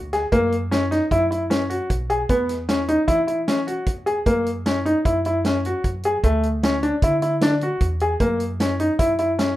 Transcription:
Already playing: D2
0.13 G#4, snare, closed hi-hat
0.32 F#2 A#3, kick, closed hi-hat
0.52 closed hi-hat
0.71 C#4, snare, closed hi-hat
0.91 D#4, snare, closed hi-hat
1.11 F#2 E4, kick, closed hi-hat
1.31 E4, closed hi-hat
1.50 C#4, snare, closed hi-hat
1.70 F#4, closed hi-hat
1.90 B1, kick, closed hi-hat
2.10 G#4, closed hi-hat
2.29 E2 B3, kick, closed hi-hat
2.49 snare, closed hi-hat
2.69 C#4, snare, closed hi-hat
2.88 D#4, closed hi-hat
3.08 E3 E4, kick, closed hi-hat
3.27 E4, closed hi-hat
3.48 C#4, snare, closed hi-hat
3.67 F#4, closed hi-hat
3.86 E2, kick, closed hi-hat
4.06 G#4, closed hi-hat
4.26 F#2 A#3, kick, closed hi-hat
4.46 closed hi-hat
4.66 C#4, snare, closed hi-hat
4.85 D#4, closed hi-hat
5.05 F#2 E4, kick, closed hi-hat
5.25 E4, closed hi-hat
5.45 C#4, snare, closed hi-hat
5.65 F#4, closed hi-hat
5.84 F#2, kick, closed hi-hat
6.03 G#4, closed hi-hat
6.24 D2 A3, kick, closed hi-hat
6.43 closed hi-hat
6.63 C#4, snare, closed hi-hat
6.83 D4, closed hi-hat
7.02 D3 E4, kick, closed hi-hat
7.22 E4, closed hi-hat
7.41 D4, snare, closed hi-hat
7.61 F#4, closed hi-hat
7.80 E2, kick, closed hi-hat
8.00 G#4, closed hi-hat
8.20 F#2 A#3, kick, closed hi-hat
8.40 closed hi-hat
8.60 C#4, snare, closed hi-hat
8.80 D#4, closed hi-hat
8.99 F#2 E4, kick, closed hi-hat
9.18 E4, closed hi-hat
9.39 C#4, snare, closed hi-hat

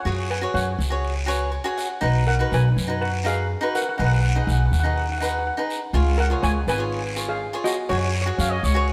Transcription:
Already playing: C#5 F#5
0.05 F#2 F#4 G#4 C#5, long guiro
0.30 B4 G#5
0.41 F#4 G#4 C#5
0.54 F#2 C#5 F#5, short guiro
0.79 C#2, short guiro
0.90 F#4 G#4 C#5
1.05 long guiro
1.26 F#4 G#4 B4 C#5
1.30 short guiro
1.52 C#5
1.64 F#4 G#4 C#5
1.77 F#5, short guiro
2.01 B1 D#4 F#4 B4, long guiro
2.27 A#4 F#5
2.39 D#4 F#4 B4
2.52 B1 B4 G#5, short guiro
2.76 F#2, short guiro
2.87 D#4 F#4 B4
3.01 B4 F#5, long guiro
3.24 D#4 F#4 G#4 B4 F5, short guiro
3.61 D#4 F#4 B4
3.75 A#4 F#5, short guiro
3.82 F#5
3.89 F#5
3.98 B1 D#4 G#4 B4 F#5, long guiro
4.05 F#5
4.13 F#5
4.21 F#5
4.29 F#5
4.35 D#4 G#4 B4 F#5
4.44 B1 F#5
4.49 F#5, short guiro
4.58 F#5
4.66 F#5
4.72 D#2 F#5, short guiro
4.80 D#4 F#5
4.84 G#4 B4 F#5
4.96 F#5, long guiro
5.03 F#5
5.12 F#5
5.19 D#4 G#4 B4 F#5, short guiro
5.25 F#5
5.31 F#5
5.39 F#5
5.47 F#5
5.57 D#4 G#4 B4
5.70 short guiro
5.93 C#2 F4 G#4 C#5, long guiro
6.18 A#4 F#5
6.30 F4 G#4 C#5
6.42 C#2 C#5 G#5, short guiro
6.67 G#1 B4 G#5, short guiro
6.78 F4 G#4 C#5
6.92 long guiro
7.16 F4 G#4 C#5, short guiro
7.28 G#4 F5
7.53 F4 G#4 C#5
7.64 F#4 D#5, short guiro
7.89 F#2 F#4 G#4 C#5, long guiro
7.98 C#5
8.05 C#5
8.14 C#5
8.22 C#5
8.26 F#4 G#4 C#5
8.38 F#2 C#5 F5, short guiro
8.45 C#5
8.50 C#5 D#5
8.63 C#2 C#5, short guiro
8.74 F#4 G#4 C#5
8.88 C#5, long guiro

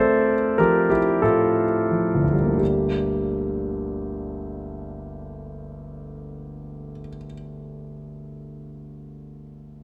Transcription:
Already playing: D2 A3 C4 F4 A4 A#4 C5 D5 E5
0.58 F3 G4 A#4
0.90 E4 G4
1.22 A2 F4 A4
1.91 F3
2.15 G1
2.24 D2
2.33 G3
2.42 A#3
2.51 D4
2.59 G4

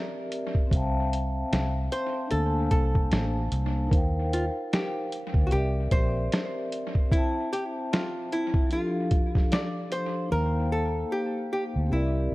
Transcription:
Already playing: C4 G4 A#4 D5 E5
0.32 closed hi-hat
0.55 kick
0.67 C4 C5
0.71 C2 E5 F5, kick, closed hi-hat
0.76 G5 A5
1.13 closed hi-hat
1.53 C2, snare, closed hi-hat
1.92 C5, closed hi-hat
2.27 A#3 D4
2.31 D2 A4 C5, closed hi-hat
2.37 G#5
2.43 A5
2.71 C2 A4, kick, closed hi-hat
2.95 kick
3.12 A1, snare, closed hi-hat
3.52 C2, closed hi-hat
3.87 D#4 A#4
3.91 D#2 C5 F5, kick, closed hi-hat
3.97 G5
4.33 F4, closed hi-hat
4.73 G4, snare, closed hi-hat
5.12 closed hi-hat
5.34 D2, kick
5.46 C4 F#4 G4
5.51 C2 G4 A#4 D5, closed hi-hat
5.57 E5
5.91 A#1 C5, kick, closed hi-hat
6.32 snare, closed hi-hat
6.72 closed hi-hat
6.95 kick
7.06 C4 C5
7.10 E4 E5, kick, closed hi-hat
7.15 G5 A5
7.53 G4, closed hi-hat
7.93 F4, snare, closed hi-hat
8.32 E4, closed hi-hat
8.54 kick
8.67 F3 D4
8.71 F4 G4 A4, closed hi-hat
8.77 F5
9.11 kick, closed hi-hat
9.35 kick, snare
9.52 D5, snare, closed hi-hat
9.92 C5, closed hi-hat
10.26 A#3 D#4
10.31 D#2 A#4 C5 F5
10.36 G5
10.72 A4
11.12 G4
11.53 G4
11.76 D2
11.86 C4 G4
11.91 C2 E4 A#4 D5
11.97 E5

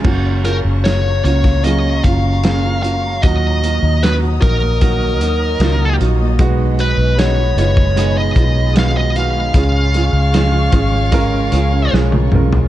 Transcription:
Already playing: C#3 G#3 C#4 F4
0.04 F#1 C#3 F#3 A#3 C#4 F4 F#4 C#5 F5 A#5 C#6, kick, crash
0.24 C#4
0.44 A#3 C#4 F4 G#4 A#4, closed hi-hat
0.64 F#1 C#4
0.84 A#3 C#4 F4 G#4 C#5, snare, closed hi-hat
1.05 F4
1.24 C#2 A#3 C#4 F4 F#4 C#5, closed hi-hat
1.44 A#3, kick, snare
1.64 F#3 A#3 C#4 F4 G#4 D#5, closed hi-hat
1.85 C#4
2.04 F#1 A#3 C#4 F4 F#4 F5, kick, closed hi-hat
2.25 C#4
2.44 A#3 C#4 F4 G#4, snare, closed hi-hat
2.65 F4
2.83 A#3 C#4 F4 F#4 F5, closed hi-hat
3.05 A#3
3.22 D#2 A#2 D#3 F#3 A#3 D#4 F#4 D#5 D#6, kick, closed hi-hat
3.45 D#4
3.62 F#3 A#3 D#4 F#4, closed hi-hat
3.83 D#2 D#4
4.03 F#3 D#4 F#4 B4, snare, closed hi-hat
4.22 F#4
4.42 A#1 F#3 A#3 D#4 F#4 A#4, kick, closed hi-hat
4.62 A#3
4.81 D#3 F#3 A#3 D#4 F#4, kick, closed hi-hat
5.02 D#4
5.20 D#2 F#3 A#3 D#4 F#4, closed hi-hat
5.42 D#4
5.60 C#2 F#3 A#3 D#4 F4, snare, closed hi-hat
5.81 F#4
6.00 A#1 F#3 A#3 D#4 F#4, closed hi-hat
6.21 A#3
6.39 B1 B2 G#3 B3 D#4 F#4 G#4 B5, kick, closed hi-hat
6.61 D#4
6.79 G#3 B3 D#4 F#4 B4, closed hi-hat
6.98 B1 D#4
7.17 D#3 G#3 B3 D#4 F#4 C#5, snare, closed hi-hat
7.39 F#4
7.56 F#1 G#3 B3 D#4 F4 C#5, closed hi-hat
7.77 G#3, kick
7.96 B2 G#3 B3 D#4 G#4, closed hi-hat
8.17 D#4 D#5
8.36 B1 G#3 B3 D#4 F4 F#4, kick, closed hi-hat
8.56 D#4
8.74 D#3 G#3 B3 D#4 F#4, snare, closed hi-hat
8.79 F5
8.95 F#4 D#5
9.15 G#3 B3 D#4 F#4 F5, closed hi-hat
9.36 G#3
9.54 C#2 G#2 C#3 G#3 C#4 F4 G#4 C#5 F5 C#6, kick, closed hi-hat
9.75 C#4
9.94 G#3 C#4 F4 G#4, closed hi-hat
10.13 C#2 C#4
10.33 F3 G#3 C#4 F4 G#4, snare, closed hi-hat
10.52 F4
10.72 G#1 G#3 C#4 F4 G#4, kick, closed hi-hat
10.93 G#3
11.12 C#3 G#3 C#4 F4 A#4, kick, closed hi-hat
11.33 C#4
11.52 C#2 G#3 C#4 F4 G#4, closed hi-hat
11.73 C#4
11.93 B1 F3 G#3 C#4 F4 G#4, snare
12.12 F4, high tom
12.32 B1 G#3 C#4 F4 A#4, mid tom
12.53 G#3, floor tom

